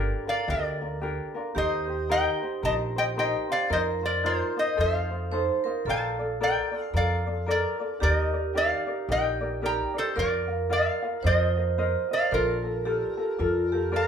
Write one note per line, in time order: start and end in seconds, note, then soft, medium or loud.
0.00 0.27 D4 medium
0.00 0.27 F4 medium
0.00 0.27 G4 medium
0.00 1.61 A4 medium
0.00 0.24 A#4 medium
0.00 0.26 A#4 loud
0.00 0.28 D5 medium
0.27 0.48 D4 soft
0.27 0.48 F4 soft
0.27 0.48 A#4 medium
0.27 0.48 D5 medium
0.27 0.49 F5 medium
0.48 1.18 D2 medium
0.48 0.81 D4 medium
0.48 0.81 F4 medium
0.48 0.81 G4 medium
0.48 0.80 A#4 medium
0.48 0.99 A#4 medium
0.48 0.99 D5 medium
0.81 1.01 D4 soft
0.81 1.02 F4 medium
0.81 1.02 A#4 medium
1.01 1.35 D4 medium
1.01 1.35 F4 medium
1.01 1.34 G4 medium
1.01 1.33 A#4 medium
1.35 1.56 D4 medium
1.35 1.56 F4 medium
1.35 1.54 A#4 medium
1.55 2.26 D#2 medium
1.55 1.88 D#4 medium
1.55 3.66 G4 medium
1.55 1.88 G4 medium
1.55 1.88 A#4 medium
1.55 1.86 C5 medium
1.55 2.07 C5 medium
1.55 2.11 D#5 medium
1.88 2.09 D#4 soft
1.88 2.09 G4 soft
1.88 2.09 C5 soft
2.09 2.42 D#4 medium
2.09 2.42 G4 medium
2.09 2.42 A#4 medium
2.09 2.41 C5 medium
2.09 2.61 D#5 medium
2.09 2.64 G5 medium
2.42 2.63 D#4 soft
2.42 2.63 G4 soft
2.42 2.63 C5 medium
2.62 3.33 A#1 medium
2.62 2.96 D#4 medium
2.62 2.96 G4 medium
2.62 2.95 A#4 medium
2.62 2.95 C5 medium
2.62 2.74 D#5 medium
2.62 2.73 A5 loud
2.96 3.16 D#4 soft
2.96 3.17 G4 medium
2.96 3.17 C5 medium
2.96 3.04 D#5 medium
2.96 3.04 G5 medium
3.17 3.50 D#4 medium
3.17 3.49 G4 medium
3.17 3.50 A#4 medium
3.17 3.48 C5 medium
3.17 3.49 D#5 medium
3.17 3.51 G5 medium
3.49 3.69 D#4 soft
3.49 3.70 G4 medium
3.49 3.71 C5 medium
3.49 3.71 D5 medium
3.49 3.70 F5 medium
3.70 4.40 F2 medium
3.70 4.03 D#4 medium
3.70 4.02 F4 medium
3.70 4.81 A#4 loud
3.70 4.03 A#4 medium
3.70 4.01 C5 medium
3.70 3.82 C5 medium
3.70 3.81 D#5 medium
4.03 4.23 D#4 soft
4.03 4.23 F4 soft
4.03 4.24 A#4 medium
4.03 4.24 C5 medium
4.03 4.24 D5 medium
4.24 4.57 D#4 medium
4.24 4.56 F4 medium
4.24 4.57 A#4 medium
4.24 4.55 C5 medium
4.24 4.56 C5 medium
4.57 4.76 D#4 soft
4.57 4.77 F4 medium
4.57 4.78 C5 medium
4.57 4.80 D#5 medium
4.77 5.48 F2 medium
4.77 5.11 D#4 medium
4.77 5.11 F4 medium
4.77 5.10 A4 medium
4.77 5.33 A4 medium
4.77 5.10 C5 medium
4.77 5.62 C5 medium
4.77 5.62 F5 medium
5.11 5.31 D#4 soft
5.11 5.32 F4 soft
5.11 5.32 C5 soft
5.32 5.65 D#4 medium
5.32 5.64 F4 medium
5.32 5.65 A4 medium
5.32 5.62 C5 medium
5.32 5.64 C5 medium
5.64 5.87 D#4 soft
5.64 5.86 F4 medium
5.64 5.84 A#4 medium
5.64 5.86 C5 medium
5.85 6.55 A#1 medium
5.85 6.19 F4 medium
5.85 7.97 A4 medium
5.85 6.19 A4 medium
5.85 6.19 A#4 medium
5.85 6.18 D5 medium
5.89 6.38 F5 medium
5.89 6.43 A5 medium
6.19 6.40 F4 soft
6.19 6.40 A4 soft
6.19 6.40 D5 soft
6.41 6.72 F4 medium
6.41 6.72 A4 medium
6.41 6.73 A#4 medium
6.41 6.70 D5 medium
6.41 6.92 D5 medium
6.41 6.92 G5 medium
6.72 6.93 F4 soft
6.72 6.94 A4 medium
6.72 6.93 D5 medium
6.93 7.63 F2 medium
6.93 7.26 F4 medium
6.93 7.26 A4 medium
6.93 7.26 A#4 medium
6.93 7.25 D5 medium
6.93 7.45 D5 medium
6.93 7.51 F5 medium
7.26 7.46 F4 soft
7.26 7.47 A4 soft
7.26 7.47 D5 medium
7.46 7.80 F4 medium
7.46 7.79 A4 medium
7.46 7.80 A#4 medium
7.46 7.78 D5 medium
7.51 7.99 A#4 medium
7.51 8.03 D5 medium
7.79 8.01 F4 soft
7.79 8.00 A4 soft
7.79 8.00 D5 medium
8.00 8.72 D#2 medium
8.00 8.34 D#4 medium
8.00 10.12 G4 medium
8.00 8.33 G4 medium
8.00 8.33 A#4 medium
8.00 8.52 A#4 medium
8.00 8.32 D5 medium
8.00 8.52 D#5 loud
8.33 8.54 D#4 soft
8.33 8.54 A#4 soft
8.33 8.54 D5 medium
8.54 8.88 D#4 medium
8.54 8.87 G4 medium
8.54 8.87 A#4 medium
8.54 8.86 D5 medium
8.54 9.06 D5 medium
8.54 9.12 F5 medium
8.87 9.08 D#4 soft
8.87 9.09 A#4 medium
8.87 9.08 D5 medium
9.09 9.79 A#1 medium
9.09 9.41 D#4 medium
9.09 9.41 G4 medium
9.09 9.40 A#4 medium
9.09 9.39 D5 medium
9.09 9.60 D#5 medium
9.09 9.64 G5 loud
9.41 9.62 D#4 soft
9.41 9.62 A#4 medium
9.41 9.62 D5 medium
9.62 9.95 D#4 medium
9.62 9.95 G4 medium
9.62 9.94 A#4 medium
9.62 9.93 D5 medium
9.62 9.95 G5 medium
9.62 9.98 A#5 loud
9.94 10.15 D#4 soft
9.94 10.15 A#4 medium
9.94 10.15 D5 medium
9.98 10.17 A4 medium
9.98 10.19 C5 medium
10.16 10.87 F2 medium
10.16 10.49 F4 medium
10.16 11.20 A#4 loud
10.16 10.48 A#4 medium
10.16 10.68 A#4 medium
10.16 10.49 D5 medium
10.16 10.72 D5 medium
10.16 10.47 F5 medium
10.48 10.69 F4 soft
10.48 10.69 A#4 soft
10.48 10.70 F5 soft
10.70 11.03 F4 medium
10.70 11.02 A#4 medium
10.70 11.03 D5 medium
10.70 11.22 D5 medium
10.70 11.01 F5 medium
10.70 11.26 F5 medium
11.03 11.23 F4 soft
11.03 11.24 A#4 medium
11.03 11.24 F5 medium
11.23 11.94 F2 medium
11.23 11.57 F4 medium
11.23 11.56 A#4 medium
11.23 12.34 C5 loud
11.23 11.57 C5 medium
11.23 11.55 D#5 medium
11.23 12.14 D#5 medium
11.27 12.08 C5 medium
11.57 11.77 F4 soft
11.57 11.77 A#4 soft
11.57 11.78 D#5 medium
11.78 12.11 F4 medium
11.78 12.10 A#4 medium
11.78 12.11 C5 medium
11.78 12.10 D#5 medium
12.11 12.31 F4 soft
12.11 12.32 A#4 medium
12.11 12.32 D5 medium
12.11 12.32 D#5 medium
12.11 12.34 F5 medium
12.31 13.02 A#1 medium
12.31 12.65 F4 medium
12.31 13.91 F4 medium
12.31 12.63 A4 medium
12.31 12.87 A#4 medium
12.31 12.64 A#4 medium
12.31 13.91 A#4 medium
12.31 12.65 D5 medium
12.64 12.85 F4 soft
12.64 12.85 A4 soft
12.64 12.85 A#4 soft
12.85 13.18 F4 medium
12.85 13.36 G4 medium
12.85 13.16 A4 medium
12.85 13.17 A#4 medium
12.85 13.18 D5 medium
13.17 13.38 F4 medium
13.17 13.39 A4 medium
13.17 13.39 A#4 medium
13.38 14.07 F2 medium
13.38 13.73 F4 medium
13.38 13.72 F4 medium
13.38 13.71 A4 medium
13.38 13.72 A#4 medium
13.38 13.72 D5 medium
13.72 13.91 F4 soft
13.72 13.94 G4 medium
13.72 13.92 A4 medium
13.72 13.92 A#4 medium
13.92 14.07 F4 medium
13.92 14.07 A4 medium
13.92 14.07 A#4 loud
13.92 14.07 D5 medium
13.96 14.07 F5 medium
13.96 14.07 A#5 medium